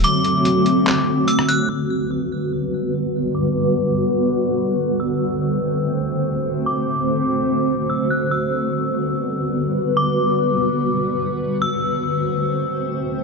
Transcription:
Already playing: ambient pad D3 F#3 A3 C4 F#4
0.04 synth bell D6, closed hi-hat
0.24 closed hi-hat
0.45 closed hi-hat
0.66 closed hi-hat
0.87 clap
1.28 synth bell E6, closed hi-hat
1.39 cross-stick
1.49 synth bell F#6, closed hi-hat
1.69 ambient pad D3 G3 B3 F#4 B4, synth bell E6
3.35 synth bell D6
5.00 ambient pad A3 C4 F#4 C5, synth bell E6
6.66 synth bell D6
7.90 synth bell E6
8.11 synth bell F#6
8.31 ambient pad G3 B3 B4, synth bell E6
9.97 synth bell D6
11.62 ambient pad D3 A3 C4 C5, synth bell E6

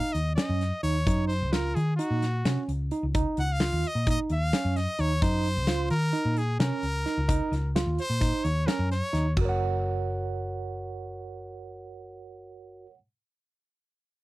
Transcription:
Already playing: tine electric piano D#4, trumpet F5
0.13 picked electric bass D#2, trumpet D#5, closed hi-hat
0.36 tine electric piano C#4, trumpet D#5, snare, closed hi-hat
0.49 picked electric bass F#2
0.61 snare, closed hi-hat
0.83 picked electric bass D#2, tine electric piano D#4, trumpet C#5, closed hi-hat
1.07 picked electric bass F#2, tine electric piano D#4, kick, closed hi-hat
1.28 trumpet C5, closed hi-hat
1.42 picked electric bass C#2
1.52 tine electric piano F4, trumpet A#4, snare, closed hi-hat
1.75 picked electric bass D#3, trumpet G#4, closed hi-hat
1.96 tine electric piano D#4, trumpet F#4, closed hi-hat
2.11 picked electric bass A#2
2.22 snare, closed hi-hat
2.45 picked electric bass C3, tine electric piano C#4, snare, closed hi-hat
2.68 picked electric bass C#2, closed hi-hat
2.91 tine electric piano D#4, closed hi-hat
3.03 picked electric bass C#2
3.14 tine electric piano D#4, kick, closed hi-hat
3.37 picked electric bass C#2, trumpet F#5, closed hi-hat
3.53 trumpet F5
3.60 tine electric piano F4, snare, closed hi-hat
3.73 picked electric bass D#2
3.84 trumpet D#5, closed hi-hat
3.95 picked electric bass A#2
4.07 tine electric piano D#4, trumpet D#5, kick, closed hi-hat
4.30 picked electric bass D#2, trumpet F5, closed hi-hat
4.53 tine electric piano C#4, snare, closed hi-hat
4.65 picked electric bass F#2
4.76 trumpet D#5, snare, closed hi-hat
4.98 picked electric bass D#2, tine electric piano D#4, trumpet C#5, closed hi-hat
5.22 picked electric bass F#2, tine electric piano D#4, trumpet C5, kick, closed hi-hat
5.45 closed hi-hat
5.57 picked electric bass C#2
5.67 tine electric piano F4, snare, closed hi-hat
5.90 picked electric bass D#3, trumpet A#4, closed hi-hat
6.13 tine electric piano D#4, closed hi-hat
6.25 picked electric bass A#2
6.36 trumpet G#4, closed hi-hat
6.60 picked electric bass C3, tine electric piano C#4, trumpet A#4, snare, closed hi-hat
6.83 picked electric bass C#2, closed hi-hat
7.06 tine electric piano D#4, snare, closed hi-hat
7.18 picked electric bass C#2
7.28 tine electric piano D#4, kick, closed hi-hat
7.52 picked electric bass C#2, snare, closed hi-hat
7.75 tine electric piano F4, snare, closed hi-hat
7.86 picked electric bass D#2
7.98 trumpet C5, closed hi-hat
8.10 picked electric bass A#2
8.21 tine electric piano D#4, kick, closed hi-hat
8.44 picked electric bass D#2, trumpet C#5, closed hi-hat
8.67 tine electric piano C#4, trumpet A#4, snare, closed hi-hat
8.79 picked electric bass F#2
8.91 trumpet C#5, snare, closed hi-hat
9.13 picked electric bass D#2, tine electric piano D#4, snare, closed hi-hat
9.37 picked electric bass F#1, tine electric piano F#4, kick, china
9.41 tine electric piano A#4 C#5
9.49 tine electric piano F#5

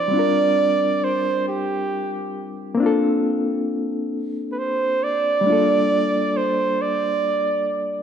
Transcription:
Already playing: reed electric piano E4 A4, flugelhorn D5
0.08 reed electric piano G3 C4
0.13 reed electric piano D4 F4
0.19 reed electric piano A#4
1.04 flugelhorn C5
1.48 flugelhorn G4
2.75 reed electric piano A#3 C4
2.80 reed electric piano D4 F4
2.86 reed electric piano A4
4.52 flugelhorn B4
4.59 flugelhorn C5
5.03 flugelhorn D5
5.41 reed electric piano G3 A3
5.47 reed electric piano A#3 D4 F4
5.52 reed electric piano A4
6.37 flugelhorn C5
6.82 flugelhorn D5

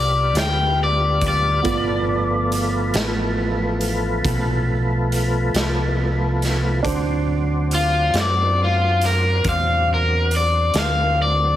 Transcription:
Already playing: fingered electric bass C2, tonewheel organ G3 B3 F4, upright piano B3 F4 A5, overdriven electric guitar D5
0.33 fingered electric bass D2, snare, closed hi-hat
0.39 overdriven electric guitar G5
0.84 overdriven electric guitar D5
1.21 kick, closed hi-hat
1.28 overdriven electric guitar D5
1.62 fingered electric bass G1, tonewheel organ F3 A3 B3, upright piano B3 F4 B4, kick, closed hi-hat
2.52 closed hi-hat
2.94 fingered electric bass A1, snare, closed hi-hat
3.81 closed hi-hat
4.24 fingered electric bass B1, kick, closed hi-hat
5.12 closed hi-hat
5.53 fingered electric bass C2, snare, closed hi-hat
6.42 snare, closed hi-hat
6.83 fingered electric bass D2, tonewheel organ F#3 C4 D4, upright piano D4 C5, kick, closed hi-hat
7.71 overdriven electric guitar F4, closed hi-hat
8.14 fingered electric bass F#2, snare, closed hi-hat
8.21 overdriven electric guitar D5
8.64 overdriven electric guitar F4
9.01 snare, closed hi-hat
9.06 overdriven electric guitar A#4
9.44 fingered electric bass E2, kick, closed hi-hat
9.49 overdriven electric guitar F5
9.94 overdriven electric guitar A#4
10.31 closed hi-hat
10.36 overdriven electric guitar D5
10.74 fingered electric bass D2, snare, closed hi-hat
10.79 overdriven electric guitar F5
11.22 overdriven electric guitar D5

